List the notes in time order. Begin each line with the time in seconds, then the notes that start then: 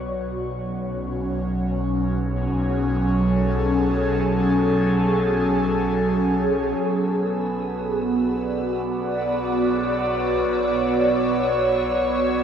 Already playing: B1 F#3 B3 F#4 C#5
0.62 C#4
2.10 G#4
2.77 A4
6.80 B1 B3
6.84 E6
7.43 F#4
8.20 D5
9.55 C#5